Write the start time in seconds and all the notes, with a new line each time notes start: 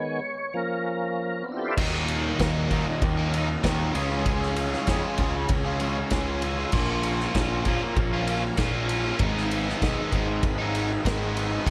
Already playing: D#3 G#3 B3 C#5
0.54 F3 A#3 C#4 A#4
0.86 A#4
1.43 B3 C4
1.48 D4 E4
1.54 F4 G4
1.59 A4 B4
1.65 C5 D5
1.71 E5 F5
1.76 D#2 A#2 D#3 F#3 A#3 D#4 F#4 A#4 D#5, kick, crash
1.94 D#3 F#3 A#3 D#4, snare
2.08 ride
2.39 D#2 A#2 D#3 F#3 A#3 D#4, kick, snare, ride
2.71 D#2 A#2 D#3 F#3 A#3 D#4, kick, ride
2.86 muted overdriven electric guitar stroke
3.02 D#2, kick, ride
3.17 D#3 F#3 A#3 D#4
3.33 D#3 F#3 A#3 D#4, ride
3.49 muted overdriven electric guitar stroke
3.63 D#2 A#2 D#3 F#3 A#3 D#4, kick, snare, ride
3.93 C#2 C#3 G#3 C#4 F4 G#4 C#5, ride
4.10 C#4 F4 G#4
4.24 C#3 G#3 C#4 F4 G#4, kick, ride
4.41 C#4 F4 G#4, snare
4.56 ride
4.73 snare
4.87 F2 C#3 G#3 C#4 F4 G#4, kick, snare, ride
5.18 C#2 G#3 C#4 F4 G#4, kick, ride
5.35 muted overdriven electric guitar stroke
5.49 C#2, kick, ride
5.65 C#4 F4 G#4
5.80 C#3 G#3 C#4 F4 G#4, ride
5.97 muted overdriven electric guitar stroke
6.10 C#2 C#3 G#3 C#4 F4 G#4, kick, snare, ride
6.42 G#3 C#4 F4 G#4, ride
6.58 C#4 F4 G#4
6.72 A#1 A#2 F3 A#3 C#4 F4 A#4 C#5, kick, crash
6.90 A#3 C#4 F4
7.03 ride
7.20 snare
7.35 A#1 A#2 F3 A#3 C#4 F4, kick, snare, ride
7.65 A#1 A#2 F3 A#3 C#4, kick, ride
7.69 F4
7.83 muted overdriven electric guitar stroke
7.96 A#1, kick, ride
8.13 A#3 C#4 F4
8.27 F3 A#3 C#4 F4, ride
8.43 muted overdriven electric guitar stroke
8.57 A#1 A#2 F3 A#3 C#4 F4, kick, snare, ride
8.88 F3 A#3 C#4 F4, ride
9.04 A#3 C#4 F4
9.19 G#1 G#2 D#3 G#3 B3 D#4 G#4 B4 D#5, kick, ride
9.35 G#3 B3 D#4, snare
9.51 ride
9.69 snare
9.82 B1 G#2 D#3 G#3 B3 D#4, kick, snare, ride
10.11 G#1 G#2 D#3 G#3 B3 D#4, kick, ride
10.27 muted overdriven electric guitar stroke
10.43 G#1, kick, ride
10.59 G#3 B3 D#4
10.75 D#3 G#3 B3 D#4, ride
10.92 muted overdriven electric guitar stroke
11.05 G#1 G#2 D#3 G#3 B3 D#4, kick, snare, ride
11.36 D#3 G#3 B3 D#4, ride
11.52 G#3 B3 D#4
11.65 D#1 D#2 A#2, kick, crash